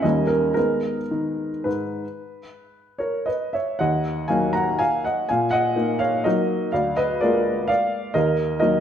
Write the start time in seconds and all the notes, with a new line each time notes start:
0.02 D#2 G3 A#3 C#4 D#5
0.27 A#4
0.54 G#3 B3 D#4 A#4
1.11 D#3
1.64 G#2 B4
2.98 A#4 C#5
3.26 B4 D#5
3.53 C#5 E5
3.79 D#2 D#5 F#5
4.28 F#3 A#3 D#4 F5 G#5
4.53 F#5 A#5
4.79 F5 G#5
5.04 D#5 F#5
5.29 A#2 F5 G#5
5.51 D#5 F#5
5.76 A#3 D#4
5.99 C#5 F5
6.24 F#3 A#3 D#4 A#4 D#5
6.72 D2 D5 F5
6.97 B4 D#5
7.21 G#3 A#3 F4 A#4 D5
7.68 D5 F5
8.14 D#2 A#4 D#5
8.60 F#3 A#3 D#4 A#4 D#5